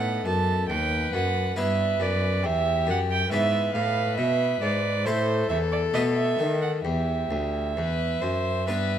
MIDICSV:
0, 0, Header, 1, 5, 480
1, 0, Start_track
1, 0, Key_signature, 1, "minor"
1, 0, Tempo, 873362
1, 1823, Time_signature, 4, 2, 24, 8
1, 3267, Tempo, 913242
1, 4866, End_track
2, 0, Start_track
2, 0, Title_t, "Violin"
2, 0, Program_c, 0, 40
2, 0, Note_on_c, 0, 78, 69
2, 142, Note_off_c, 0, 78, 0
2, 151, Note_on_c, 0, 81, 77
2, 376, Note_off_c, 0, 81, 0
2, 380, Note_on_c, 0, 79, 80
2, 617, Note_off_c, 0, 79, 0
2, 629, Note_on_c, 0, 78, 77
2, 862, Note_off_c, 0, 78, 0
2, 877, Note_on_c, 0, 76, 79
2, 1113, Note_on_c, 0, 74, 74
2, 1121, Note_off_c, 0, 76, 0
2, 1352, Note_on_c, 0, 76, 82
2, 1361, Note_off_c, 0, 74, 0
2, 1588, Note_off_c, 0, 76, 0
2, 1597, Note_on_c, 0, 78, 80
2, 1641, Note_off_c, 0, 78, 0
2, 1709, Note_on_c, 0, 79, 76
2, 1824, Note_off_c, 0, 79, 0
2, 1827, Note_on_c, 0, 76, 81
2, 2054, Note_off_c, 0, 76, 0
2, 2057, Note_on_c, 0, 77, 78
2, 2292, Note_off_c, 0, 77, 0
2, 2295, Note_on_c, 0, 76, 81
2, 2533, Note_off_c, 0, 76, 0
2, 2543, Note_on_c, 0, 74, 74
2, 2776, Note_on_c, 0, 72, 81
2, 2785, Note_off_c, 0, 74, 0
2, 3015, Note_off_c, 0, 72, 0
2, 3018, Note_on_c, 0, 76, 75
2, 3062, Note_off_c, 0, 76, 0
2, 3145, Note_on_c, 0, 74, 67
2, 3189, Note_off_c, 0, 74, 0
2, 3265, Note_on_c, 0, 75, 72
2, 3307, Note_off_c, 0, 75, 0
2, 3381, Note_on_c, 0, 76, 71
2, 3616, Note_off_c, 0, 76, 0
2, 3622, Note_on_c, 0, 78, 62
2, 3664, Note_off_c, 0, 78, 0
2, 3737, Note_on_c, 0, 76, 64
2, 4866, Note_off_c, 0, 76, 0
2, 4866, End_track
3, 0, Start_track
3, 0, Title_t, "Violin"
3, 0, Program_c, 1, 40
3, 0, Note_on_c, 1, 69, 46
3, 389, Note_on_c, 1, 71, 54
3, 397, Note_off_c, 1, 69, 0
3, 860, Note_off_c, 1, 71, 0
3, 863, Note_on_c, 1, 71, 59
3, 1338, Note_on_c, 1, 67, 61
3, 1347, Note_off_c, 1, 71, 0
3, 1818, Note_off_c, 1, 67, 0
3, 1822, Note_on_c, 1, 71, 58
3, 2774, Note_on_c, 1, 69, 68
3, 2782, Note_off_c, 1, 71, 0
3, 3736, Note_off_c, 1, 69, 0
3, 3739, Note_on_c, 1, 67, 45
3, 4167, Note_off_c, 1, 67, 0
3, 4225, Note_on_c, 1, 71, 60
3, 4457, Note_on_c, 1, 72, 57
3, 4464, Note_off_c, 1, 71, 0
3, 4702, Note_off_c, 1, 72, 0
3, 4705, Note_on_c, 1, 71, 65
3, 4866, Note_off_c, 1, 71, 0
3, 4866, End_track
4, 0, Start_track
4, 0, Title_t, "Harpsichord"
4, 0, Program_c, 2, 6
4, 0, Note_on_c, 2, 45, 47
4, 0, Note_on_c, 2, 59, 37
4, 0, Note_on_c, 2, 63, 36
4, 0, Note_on_c, 2, 71, 35
4, 125, Note_off_c, 2, 45, 0
4, 142, Note_on_c, 2, 42, 44
4, 362, Note_off_c, 2, 42, 0
4, 384, Note_on_c, 2, 39, 44
4, 602, Note_off_c, 2, 39, 0
4, 624, Note_on_c, 2, 42, 48
4, 842, Note_off_c, 2, 42, 0
4, 842, Note_off_c, 2, 59, 0
4, 844, Note_off_c, 2, 63, 0
4, 845, Note_off_c, 2, 71, 0
4, 859, Note_on_c, 2, 43, 42
4, 860, Note_on_c, 2, 59, 36
4, 861, Note_on_c, 2, 64, 34
4, 866, Note_on_c, 2, 71, 34
4, 1080, Note_off_c, 2, 43, 0
4, 1099, Note_on_c, 2, 42, 54
4, 1320, Note_off_c, 2, 42, 0
4, 1341, Note_on_c, 2, 40, 47
4, 1560, Note_off_c, 2, 40, 0
4, 1577, Note_on_c, 2, 42, 49
4, 1798, Note_off_c, 2, 42, 0
4, 1799, Note_off_c, 2, 59, 0
4, 1799, Note_off_c, 2, 64, 0
4, 1802, Note_off_c, 2, 71, 0
4, 1821, Note_on_c, 2, 44, 48
4, 1822, Note_on_c, 2, 59, 42
4, 1827, Note_on_c, 2, 64, 40
4, 1830, Note_on_c, 2, 74, 41
4, 2039, Note_off_c, 2, 44, 0
4, 2062, Note_on_c, 2, 45, 49
4, 2279, Note_off_c, 2, 45, 0
4, 2296, Note_on_c, 2, 47, 52
4, 2516, Note_off_c, 2, 47, 0
4, 2539, Note_on_c, 2, 44, 51
4, 2758, Note_off_c, 2, 44, 0
4, 2759, Note_off_c, 2, 59, 0
4, 2761, Note_off_c, 2, 64, 0
4, 2763, Note_off_c, 2, 74, 0
4, 2783, Note_on_c, 2, 45, 47
4, 2783, Note_on_c, 2, 57, 40
4, 2784, Note_on_c, 2, 64, 40
4, 2787, Note_on_c, 2, 72, 37
4, 3002, Note_off_c, 2, 45, 0
4, 3024, Note_on_c, 2, 40, 50
4, 3246, Note_off_c, 2, 40, 0
4, 3246, Note_off_c, 2, 57, 0
4, 3247, Note_off_c, 2, 64, 0
4, 3248, Note_off_c, 2, 72, 0
4, 3262, Note_on_c, 2, 57, 35
4, 3264, Note_on_c, 2, 47, 45
4, 3265, Note_on_c, 2, 59, 36
4, 3273, Note_on_c, 2, 71, 38
4, 3481, Note_off_c, 2, 47, 0
4, 3501, Note_on_c, 2, 51, 43
4, 3720, Note_off_c, 2, 57, 0
4, 3721, Note_off_c, 2, 51, 0
4, 3722, Note_off_c, 2, 59, 0
4, 3725, Note_off_c, 2, 71, 0
4, 3742, Note_on_c, 2, 40, 43
4, 3963, Note_off_c, 2, 40, 0
4, 3983, Note_on_c, 2, 38, 43
4, 4204, Note_off_c, 2, 38, 0
4, 4228, Note_on_c, 2, 40, 40
4, 4447, Note_off_c, 2, 40, 0
4, 4463, Note_on_c, 2, 42, 40
4, 4684, Note_off_c, 2, 42, 0
4, 4703, Note_on_c, 2, 43, 37
4, 4705, Note_on_c, 2, 59, 29
4, 4707, Note_on_c, 2, 71, 31
4, 4866, Note_off_c, 2, 43, 0
4, 4866, Note_off_c, 2, 59, 0
4, 4866, Note_off_c, 2, 71, 0
4, 4866, End_track
5, 0, Start_track
5, 0, Title_t, "Cello"
5, 0, Program_c, 3, 42
5, 0, Note_on_c, 3, 45, 55
5, 141, Note_off_c, 3, 45, 0
5, 147, Note_on_c, 3, 42, 56
5, 381, Note_off_c, 3, 42, 0
5, 385, Note_on_c, 3, 39, 58
5, 618, Note_off_c, 3, 39, 0
5, 621, Note_on_c, 3, 42, 56
5, 856, Note_off_c, 3, 42, 0
5, 859, Note_on_c, 3, 43, 61
5, 1097, Note_off_c, 3, 43, 0
5, 1103, Note_on_c, 3, 42, 64
5, 1345, Note_on_c, 3, 40, 64
5, 1353, Note_off_c, 3, 42, 0
5, 1584, Note_on_c, 3, 42, 63
5, 1592, Note_off_c, 3, 40, 0
5, 1816, Note_off_c, 3, 42, 0
5, 1819, Note_on_c, 3, 44, 62
5, 2055, Note_off_c, 3, 44, 0
5, 2061, Note_on_c, 3, 45, 62
5, 2296, Note_on_c, 3, 47, 62
5, 2305, Note_off_c, 3, 45, 0
5, 2529, Note_off_c, 3, 47, 0
5, 2533, Note_on_c, 3, 44, 57
5, 2777, Note_on_c, 3, 45, 62
5, 2786, Note_off_c, 3, 44, 0
5, 3021, Note_off_c, 3, 45, 0
5, 3023, Note_on_c, 3, 40, 60
5, 3263, Note_off_c, 3, 40, 0
5, 3266, Note_on_c, 3, 47, 56
5, 3498, Note_off_c, 3, 47, 0
5, 3504, Note_on_c, 3, 51, 58
5, 3739, Note_off_c, 3, 51, 0
5, 3743, Note_on_c, 3, 40, 50
5, 3980, Note_off_c, 3, 40, 0
5, 3983, Note_on_c, 3, 38, 49
5, 4223, Note_on_c, 3, 40, 50
5, 4231, Note_off_c, 3, 38, 0
5, 4459, Note_off_c, 3, 40, 0
5, 4462, Note_on_c, 3, 42, 46
5, 4706, Note_on_c, 3, 43, 49
5, 4713, Note_off_c, 3, 42, 0
5, 4866, Note_off_c, 3, 43, 0
5, 4866, End_track
0, 0, End_of_file